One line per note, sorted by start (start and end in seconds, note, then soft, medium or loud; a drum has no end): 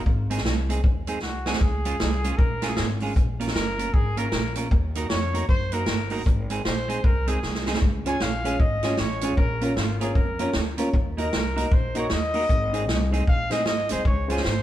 0.00 0.30 F4 medium
0.06 0.45 G#1 loud
0.06 kick loud
0.30 0.40 G#3 medium
0.30 0.40 C4 medium
0.30 0.40 D#4 medium
0.30 0.41 G#4 medium
0.30 closed hi-hat medium
0.37 snare medium
0.45 0.78 C2 medium
0.45 snare loud
0.69 0.79 G#3 medium
0.69 0.79 C4 medium
0.69 0.79 D#4 medium
0.69 0.80 G#4 medium
0.69 closed hi-hat medium
0.84 1.23 D#2 medium
0.84 kick loud
1.07 1.18 G#3 medium
1.07 1.18 C4 medium
1.07 1.18 D#4 loud
1.07 1.18 G#4 medium
1.07 closed hi-hat medium
1.22 1.56 C2 medium
1.22 1.62 F#4 medium
1.22 snare medium
1.46 1.56 G#3 medium
1.46 1.57 C4 medium
1.46 1.57 D#4 loud
1.46 1.57 G#4 loud
1.46 snare medium
1.53 snare medium
1.60 1.94 C#2 loud
1.60 2.39 G#4 medium
1.60 kick loud
1.85 1.95 G#3 medium
1.85 1.96 C#4 medium
1.85 1.96 F4 medium
1.85 1.96 G#4 medium
1.85 closed hi-hat medium
2.00 2.34 C2 medium
2.00 snare loud
2.24 2.34 G#3 medium
2.24 2.34 C#4 medium
2.24 2.35 F4 medium
2.24 2.35 G#4 medium
2.24 closed hi-hat medium
2.38 2.72 A#1 medium
2.38 2.70 A#4 loud
2.38 kick loud
2.62 2.73 G#3 medium
2.62 2.73 C#4 medium
2.62 2.73 F4 medium
2.62 2.73 G#4 medium
2.62 snare medium
2.62 closed hi-hat medium
2.69 2.89 G#4 medium
2.76 3.11 G#1 loud
2.76 snare loud
3.00 3.12 G#3 medium
3.00 3.12 C#4 medium
3.00 3.12 F4 medium
3.00 3.12 G#4 medium
3.00 open hi-hat medium
3.16 3.49 A#1 loud
3.16 kick loud
3.16 hi-hat pedal medium
3.40 3.50 A#3 medium
3.40 3.50 C#4 medium
3.40 3.50 F4 medium
3.40 3.51 A#4 medium
3.40 closed hi-hat medium
3.48 snare medium
3.54 3.88 F#1 medium
3.54 3.95 A#4 loud
3.54 snare loud
3.78 3.89 A#3 medium
3.78 3.89 C#4 medium
3.78 3.89 F4 medium
3.78 3.90 A#4 medium
3.78 closed hi-hat medium
3.94 4.27 G#1 medium
3.94 4.19 G#4 loud
3.94 kick loud
4.17 4.27 A#3 medium
4.17 4.28 C#4 medium
4.17 4.28 F4 medium
4.17 4.57 A#4 loud
4.17 4.28 A#4 loud
4.17 closed hi-hat medium
4.32 4.66 A#1 loud
4.32 snare loud
4.55 4.66 A#3 medium
4.55 4.67 C#4 medium
4.55 4.67 F4 medium
4.55 4.67 A#4 loud
4.55 closed hi-hat medium
4.71 5.05 D#2 loud
4.71 kick loud
4.95 5.06 A#3 medium
4.95 5.06 D#4 medium
4.95 5.06 F#4 medium
4.95 5.06 A#4 medium
4.95 closed hi-hat medium
5.09 5.44 F2 medium
5.09 5.46 C#5 loud
5.09 snare loud
5.34 5.44 A#3 medium
5.34 5.44 D#4 medium
5.34 5.45 F#4 medium
5.34 5.45 A#4 loud
5.34 closed hi-hat medium
5.49 5.82 F#2 medium
5.49 5.75 C5 loud
5.49 kick loud
5.72 5.83 A#3 medium
5.72 5.83 D#4 medium
5.72 5.84 F#4 medium
5.72 6.12 A#4 loud
5.72 5.84 A#4 medium
5.72 closed hi-hat medium
5.86 6.21 G1 loud
5.86 snare loud
6.10 6.21 A#3 medium
6.10 6.22 D#4 loud
6.10 6.22 F#4 loud
6.10 6.22 A#4 loud
6.10 open hi-hat medium
6.26 6.60 G#1 loud
6.26 kick loud
6.26 hi-hat pedal medium
6.50 6.60 G#3 medium
6.50 6.61 C4 medium
6.50 6.61 D#4 medium
6.50 6.61 G#4 loud
6.50 closed hi-hat medium
6.65 6.99 A#1 medium
6.65 7.06 C5 loud
6.65 snare loud
6.88 6.99 G#3 medium
6.88 6.99 C4 medium
6.88 6.99 D#4 medium
6.88 7.00 G#4 medium
6.88 closed hi-hat medium
7.04 7.38 C2 medium
7.04 7.30 A#4 loud
7.04 kick loud
7.27 7.38 G#3 medium
7.27 7.38 C4 loud
7.27 7.38 D#4 medium
7.27 7.38 G#4 loud
7.27 7.67 G#4 medium
7.27 closed hi-hat medium
7.43 7.77 C2 medium
7.43 snare medium
7.55 snare medium
7.66 7.77 G#3 medium
7.66 7.77 C4 loud
7.66 7.78 D#4 loud
7.66 7.78 G#4 loud
7.66 snare medium
7.74 snare medium
7.82 8.15 C#2 loud
7.82 kick loud
8.05 8.16 G#3 medium
8.05 8.17 C#4 medium
8.05 8.16 C#4 medium
8.05 8.17 F4 medium
8.05 8.16 F4 medium
8.05 8.17 G#4 medium
8.05 8.18 C#5 loud
8.05 8.24 G#5 loud
8.05 closed hi-hat medium
8.20 8.54 A#1 medium
8.20 8.26 G#4 soft
8.20 8.26 C#5 soft
8.20 8.62 F5 loud
8.20 snare loud
8.44 8.55 G#3 medium
8.44 8.56 C#4 medium
8.44 8.55 C#4 medium
8.44 8.56 F4 medium
8.44 8.55 F4 medium
8.44 8.56 G#4 medium
8.44 8.56 C#5 medium
8.44 closed hi-hat medium
8.60 8.93 G#1 loud
8.60 9.01 D#5 loud
8.60 kick loud
8.83 8.94 G#3 medium
8.83 8.95 C#4 medium
8.83 8.94 C#4 medium
8.83 8.95 F4 medium
8.83 8.94 F4 medium
8.83 8.95 G#4 medium
8.83 8.94 G#4 medium
8.83 8.95 C#5 loud
8.83 snare medium
8.83 closed hi-hat medium
8.97 9.32 A1 loud
8.97 9.36 C#5 loud
8.97 snare loud
9.21 9.33 G#3 medium
9.21 9.34 C#4 medium
9.21 9.33 C#4 medium
9.21 9.34 F4 medium
9.21 9.33 F4 medium
9.21 9.34 G#4 medium
9.21 9.34 C#5 loud
9.21 closed hi-hat medium
9.37 9.71 A#1 loud
9.37 9.78 A#4 loud
9.37 kick loud
9.61 9.71 A#3 medium
9.61 9.73 C#4 medium
9.61 9.72 C#4 medium
9.61 9.73 F4 medium
9.61 9.72 F4 medium
9.61 9.73 A#4 medium
9.61 9.72 A#4 medium
9.61 9.73 C#5 medium
9.61 closed hi-hat medium
9.76 10.10 G#1 medium
9.76 10.00 F4 medium
9.76 9.82 A#4 soft
9.76 9.82 C#5 soft
9.76 snare loud
10.00 10.11 A#3 medium
10.00 10.12 C#4 medium
10.00 10.11 C#4 medium
10.00 10.12 F4 medium
10.00 10.11 F4 medium
10.00 10.16 G#4 loud
10.00 10.12 A#4 medium
10.00 10.11 A#4 medium
10.00 10.12 C#5 loud
10.00 closed hi-hat medium
10.15 10.49 F2 medium
10.15 10.54 A#4 medium
10.15 kick loud
10.39 10.49 A#3 medium
10.39 10.51 C#4 medium
10.39 10.50 C#4 medium
10.39 10.51 F4 medium
10.39 10.50 F4 medium
10.39 10.51 A#4 medium
10.39 10.50 A#4 medium
10.39 10.51 C#5 loud
10.39 closed hi-hat medium
10.53 10.88 D2 medium
10.53 snare loud
10.78 10.88 A#3 medium
10.78 10.88 C#4 medium
10.78 10.90 C#4 medium
10.78 10.88 F4 loud
10.78 10.90 F4 medium
10.78 10.90 A#4 medium
10.78 10.89 A#4 loud
10.78 10.90 C#5 loud
10.78 closed hi-hat loud
10.94 11.27 D#2 loud
10.94 kick loud
11.17 11.27 A#3 medium
11.17 11.29 D#4 medium
11.17 11.28 D#4 medium
11.17 11.29 F#4 medium
11.17 11.28 F#4 medium
11.17 11.29 A#4 medium
11.17 11.28 A#4 loud
11.17 11.74 A#4 medium
11.17 11.29 D#5 loud
11.17 closed hi-hat medium
11.33 11.66 C2 medium
11.33 11.37 A#4 soft
11.33 11.37 D#5 soft
11.33 snare loud
11.56 11.66 A#3 medium
11.56 11.67 D#4 medium
11.56 11.66 D#4 medium
11.56 11.68 F#4 medium
11.56 11.67 F#4 medium
11.56 11.68 A#4 medium
11.56 11.67 A#4 medium
11.56 11.68 D#5 loud
11.56 closed hi-hat medium
11.71 12.05 A#1 medium
11.71 12.01 C5 medium
11.71 kick loud
11.94 12.05 A#3 medium
11.94 12.06 D#4 medium
11.94 12.06 F#4 medium
11.94 12.06 A#4 medium
11.94 12.06 A#4 loud
11.94 12.07 D#5 loud
11.94 closed hi-hat medium
11.99 12.14 C#5 medium
12.10 12.44 D#2 medium
12.10 13.13 D#5 loud
12.10 snare loud
12.34 12.44 A#3 medium
12.34 12.45 D#4 medium
12.34 12.44 D#4 medium
12.34 12.46 F#4 medium
12.34 12.45 F#4 loud
12.34 12.46 A#4 medium
12.34 12.45 A#4 loud
12.34 12.46 D#5 loud
12.34 open hi-hat medium
12.49 12.89 G#1 loud
12.49 kick loud
12.49 hi-hat pedal medium
12.72 12.83 G#3 medium
12.72 12.84 C4 medium
12.72 12.84 D#4 medium
12.72 12.84 G#4 medium
12.72 12.85 C5 medium
12.72 12.85 D#5 loud
12.72 closed hi-hat medium
12.88 13.22 C2 medium
12.88 12.93 C5 soft
12.88 12.93 D#5 soft
12.88 snare loud
13.11 13.22 G#3 medium
13.11 13.23 C4 medium
13.11 13.23 D#4 medium
13.11 13.23 G#4 medium
13.11 13.23 C5 medium
13.11 13.23 D#5 medium
13.11 closed hi-hat medium
13.27 13.68 A#1 medium
13.27 13.53 F5 loud
13.27 kick loud
13.50 13.61 G#3 medium
13.50 13.62 C4 medium
13.50 13.62 D#4 medium
13.50 13.62 G#4 medium
13.50 13.62 C5 medium
13.50 13.62 D#5 loud
13.50 13.67 D#5 loud
13.50 snare medium
13.50 closed hi-hat medium
13.66 13.87 G#1 loud
13.66 13.89 D#5 loud
13.66 snare loud
13.89 14.04 C2 medium
13.89 14.01 G#3 medium
13.89 14.01 C4 medium
13.89 14.01 D#4 medium
13.89 14.01 G#4 medium
13.89 14.01 C5 medium
13.89 14.05 C5 loud
13.89 14.02 D#5 loud
13.89 closed hi-hat loud
14.05 14.38 C#2 loud
14.05 14.31 C#5 medium
14.05 kick loud
14.27 14.40 G#3 medium
14.27 14.39 C#4 medium
14.27 14.40 C#4 medium
14.27 14.40 F4 medium
14.27 14.40 G#4 medium
14.27 14.62 C5 loud
14.27 14.40 C#5 loud
14.27 closed hi-hat medium
14.31 14.40 G#4 loud
14.37 snare medium
14.44 14.62 G#1 medium
14.44 14.49 G#4 soft
14.44 14.49 C#5 soft
14.44 snare loud